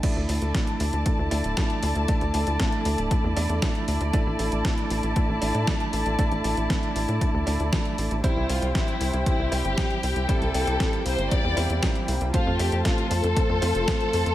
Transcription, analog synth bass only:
X:1
M:4/4
L:1/16
Q:1/4=117
K:Dm
V:1 name="Analog synth bass" clef=bass
z D,, D,, D,, z2 D,, D,, z D,, D,, D,,, z2 D,, D,, | z D,, D,, D,, z2 D,, D,,, z E,, E,, E,, z2 D,, D,, | z A,,, A,,, A,,, z2 A,,, A,,, z A,,, A,,, A,, z2 A,,, A,,, | z A,,, A,,, A,,, z2 A,,, A,, z D,, D,, D,, z2 A,,, A,,, |
z C,, C,, C,, z2 C,, C,, z C,, C,, G,,, z2 C,, C,, | z C,, C,, C,, z2 C,, G,,, z E,, E,, E,, z2 C,, C,, | z F,, F,, F,, z2 F,, F,, z F,, F,, F,,, z2 F,, F,, |]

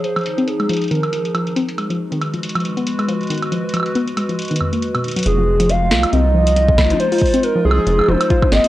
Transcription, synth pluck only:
X:1
M:4/4
L:1/16
Q:"Swing 16ths" 1/4=138
K:Fphr
V:1 name="Synth pluck" clef=bass
z F, z C z A, F, z E, z F, z F, z C z | A, F, z E, z F, z F, z _C z A, F, z E, z | F, z F, z _C z A, F, z E, F,, B, z _C, z G, | z F, z F, F, z F z C z F, z F, z F, F, |
z F z C z F, z F, z F, F, z F z C z |]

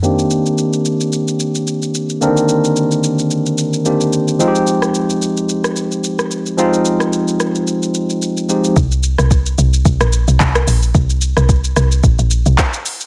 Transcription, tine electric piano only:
X:1
M:4/4
L:1/8
Q:"Swing 16ths" 1/4=110
K:Cm
V:1 name="Tine electric piano"
[E,B,CDG]8 | [D,E,B,CDB]6 [E,B,CDG]2 | [F,A,CEFG]8 | [F,A,CEF]6- [F,A,CEF] [F,A,CEG] |
z8 | z8 |]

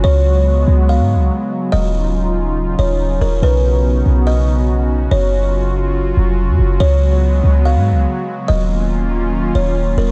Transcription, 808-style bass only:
X:1
M:4/4
L:1/16
Q:1/4=142
K:C#mix
V:1 name="808-style bass" clef=bass
C,,6 C,,3 G,,3/2 C,,3/2 z4 | D,,,8- D,,,2 D,,,4 D,,,2 | B,,,6 B,,,8- B,,,2 | F,,,8- F,,,2 E,,,3 F,, F,,,2 |
C,,6 C,,3 G,,3/2 C,,3/2 z4 | D,,,8- D,,,2 D,,,4 D,,,2 |]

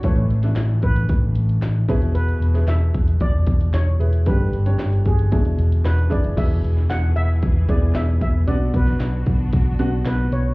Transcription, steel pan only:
X:1
M:4/4
L:1/8
Q:1/4=114
K:Emix
V:1 name="Steel pan"
c3 B4 z | B2 e2 d2 c2 | B3 G3 B d | e2 f e2 d e e |
d B3 z2 B c |]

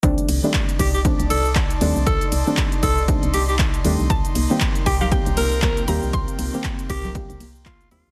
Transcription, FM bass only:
X:1
M:4/4
L:1/16
Q:"Swing 16ths" 1/4=118
K:Cdor
V:1 name="FM bass" clef=bass
C,, z C,, z3 C,,3 C,, C,,4 E,, C,, | C,, z C,, z3 C,,3 C,, C,,4 E,, C,, | C,, z C,, z3 C,,3 C,, C,,4 E,, C,, | C,, z C,, z3 C,,3 C,, C,,4 E,, C,, |]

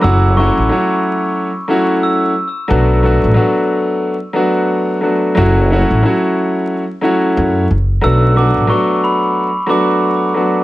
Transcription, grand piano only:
X:1
M:4/4
L:1/8
Q:"Swing 16ths" 1/4=90
K:Bm
V:1 name="Grand piano"
[F,A,CEF] [F,A,CEF] [F,A,CEF]2 z [F,A,CEF]2 z | [F,A,B,DF] [F,A,B,DF] [F,A,B,DF]2 z [F,A,B,DF]2 [F,A,B,DF] | [F,A,CEF] [F,A,CEF] [F,A,CEF]2 z [F,A,CEF]2 z | [F,A,B,DF] [F,A,B,DF] [F,A,B,DF]2 z [F,A,B,DF]2 [F,A,B,DF] |]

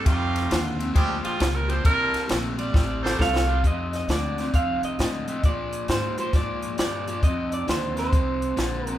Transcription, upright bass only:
X:1
M:4/4
L:1/8
Q:"Swing" 1/4=134
K:Fmix
V:1 name="Upright bass" clef=bass
F,,2 E,,2 D,, z _D,,2 | C,, z B,,,2 A,,,2 C,,2 | F,,2 D,,2 F,, z A,,2 | B,,2 _A,,2 A,,2 G,,2 |
F,,2 E,,2 C,,2 B,,,2 |]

